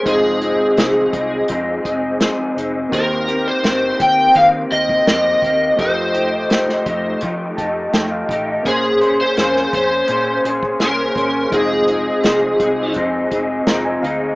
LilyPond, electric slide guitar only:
\new Staff \with { instrumentName = "Electric slide guitar" } { \time 4/4 \key f \minor \tempo 4 = 84 aes'2 r2 | bes'8. c''8. g''8 f''8 ees''8 ees''4 | c''2 r2 | aes'8. c''8. c''4 r8 bes'4 |
aes'2 r2 | }